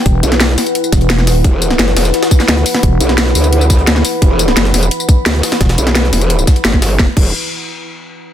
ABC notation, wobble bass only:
X:1
M:4/4
L:1/8
Q:1/4=173
K:Em
V:1 name="Wobble bass" clef=bass
z B,,,2 z4 z | E,,,2 F,,, E,,, z2 D,, z | z B,,,2 D,,3 D,, z | E,,,2 F,,, E,,, z2 D,, z |
z B,,,2 E,,,2 z G,,,2 | E,,, E,,, z6 |]